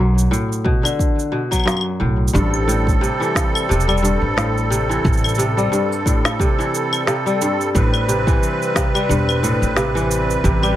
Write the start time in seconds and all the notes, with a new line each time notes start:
Already playing: B1 F#2 F#3
0.18 shaker
0.31 A2, shaker
0.52 shaker
0.64 B2, kick
0.83 D3, claves, shaker
0.99 kick, shaker
1.19 shaker
1.32 B2
1.51 F#3, kick, claves, shaker
1.56 claves
1.60 claves
1.64 F#2, snare, claves
1.68 claves, shaker
1.72 claves
1.77 claves
1.81 claves
2.00 B1 A2
2.28 shaker
2.33 A1 G2 G3 C4 A4, kick, shaker
2.54 claves, shaker
2.68 A2, shaker
2.87 kick, shaker
3.01 C3, shaker
3.20 E3, shaker
3.35 kick, snare, shaker
3.55 claves, shaker
3.69 E1 C3, shaker
3.80 shaker
3.88 G3, claves, shaker
3.97 shaker
4.03 G2, shaker
4.21 A1
4.37 A2, snare, shaker
4.58 shaker
4.70 C3, shaker
4.89 E3, shaker
5.04 A1, kick, shaker
5.13 shaker
5.17 shaker
5.24 claves, shaker
5.28 shaker
5.35 C3, shaker
5.39 shaker
5.57 G3, shaker
5.72 G2, shaker
5.92 shaker
6.06 A2, kick, shaker
6.25 snare, claves, shaker
6.39 C3, kick, shaker
6.59 E3, shaker
6.75 shaker
6.93 claves, shaker
7.07 C3, snare, shaker
7.26 G3, shaker
7.42 G2, shaker
7.61 shaker
7.75 A1 A2 B4, kick, shaker
7.94 claves, shaker
8.08 C3, shaker
8.27 E3, kick, shaker
8.43 shaker
8.62 shaker
8.76 C3, kick, snare, shaker
8.95 G3, claves, shaker
9.09 E1 G2, shaker
9.29 claves, shaker
9.43 A2, shaker
9.62 A1, shaker
9.76 C3, snare, shaker
9.95 E3, shaker
10.11 shaker
10.30 shaker
10.44 A1 C3, kick, shaker
10.63 G3, claves, shaker